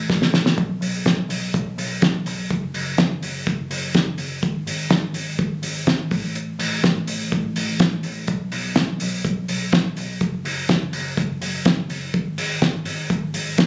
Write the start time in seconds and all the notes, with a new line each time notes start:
0.10 A1, kick, snare
0.22 snare
0.33 A1, snare
0.46 snare
0.58 B1, kick, closed hi-hat
0.81 B1, open hi-hat
1.06 B1, kick, snare, closed hi-hat
1.29 B1, open hi-hat
1.54 B1, kick, closed hi-hat
1.78 B1, open hi-hat
2.02 B1, kick, snare, closed hi-hat
2.26 B1, open hi-hat
2.50 F#1, kick, closed hi-hat
2.74 F#1, open hi-hat
2.98 F#1, kick, snare, closed hi-hat
3.23 F#1, open hi-hat
3.47 F#1, kick, closed hi-hat
3.71 F#1, open hi-hat
3.94 F#1, kick, snare, closed hi-hat
4.18 F#1, open hi-hat
4.43 G#1, kick, closed hi-hat
4.67 G#1, open hi-hat
4.90 G#1, kick, snare, closed hi-hat
5.14 G#1, open hi-hat
5.39 G#1, kick, closed hi-hat
5.62 G#1, open hi-hat
5.87 G#1, kick, snare, closed hi-hat
6.11 A1, kick, open hi-hat
6.35 closed hi-hat
6.59 A1, open hi-hat
6.83 A1, kick, snare, closed hi-hat
7.07 A1, open hi-hat
7.32 A1, kick, closed hi-hat
7.56 A1, open hi-hat
7.80 A1, kick, snare, closed hi-hat
8.03 A1, open hi-hat
8.27 B1, kick, closed hi-hat
8.52 B1, open hi-hat
8.76 B1, kick, snare, closed hi-hat
9.00 B1, open hi-hat
9.24 B1, kick, closed hi-hat
9.48 B1, open hi-hat
9.72 B1, kick, snare, closed hi-hat
9.97 B1, open hi-hat
10.21 F#1, kick, closed hi-hat
10.45 F#1, open hi-hat
10.69 F#1, kick, snare, closed hi-hat
10.93 F#1, open hi-hat
11.17 F#1, kick, closed hi-hat
11.41 F#1, open hi-hat
11.65 F#1, kick, snare, closed hi-hat
11.90 F#1, open hi-hat
12.14 G#1, kick, closed hi-hat
12.38 G#1, open hi-hat
12.62 G#1, kick, snare, closed hi-hat
12.85 G#1, open hi-hat
13.10 G#1, kick, closed hi-hat
13.34 G#1, open hi-hat
13.58 G#1, kick, snare, closed hi-hat